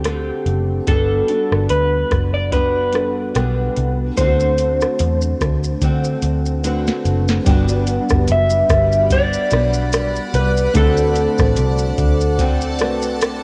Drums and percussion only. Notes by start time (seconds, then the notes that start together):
0.04 cross-stick, closed hi-hat
0.46 closed hi-hat
0.87 kick, closed hi-hat
1.28 closed hi-hat
1.52 cross-stick
1.69 closed hi-hat
2.11 kick, cross-stick, closed hi-hat
2.52 kick, closed hi-hat
2.93 cross-stick, closed hi-hat
3.35 cross-stick, closed hi-hat
3.77 closed hi-hat
4.18 kick, closed hi-hat, shaker
4.40 shaker
4.58 closed hi-hat, shaker
4.81 cross-stick, shaker
4.99 closed hi-hat, shaker
5.22 shaker
5.41 kick, cross-stick, closed hi-hat, shaker
5.64 shaker
5.81 kick, closed hi-hat, shaker
6.04 shaker
6.22 closed hi-hat, shaker
6.46 shaker
6.64 closed hi-hat, shaker
6.87 snare, shaker
7.05 closed hi-hat, shaker
7.28 snare, shaker
7.46 kick, closed hi-hat, shaker
7.68 shaker
7.87 closed hi-hat, shaker
8.09 kick, cross-stick, shaker
8.27 closed hi-hat, shaker
8.50 shaker
8.69 kick, cross-stick, closed hi-hat, shaker
8.92 shaker
9.10 kick, closed hi-hat, shaker
9.33 shaker
9.51 cross-stick, closed hi-hat, shaker
9.73 shaker
9.93 cross-stick, closed hi-hat, shaker
10.16 shaker
10.34 closed hi-hat, shaker
10.57 shaker
10.75 kick, closed hi-hat, shaker
10.97 shaker
11.16 closed hi-hat, shaker
11.39 kick, cross-stick, shaker
11.57 closed hi-hat, shaker
11.78 shaker
11.98 kick, closed hi-hat, shaker
12.21 shaker
12.39 kick, closed hi-hat, shaker
12.61 shaker
12.79 cross-stick, closed hi-hat, shaker
13.02 shaker
13.21 cross-stick, closed hi-hat, shaker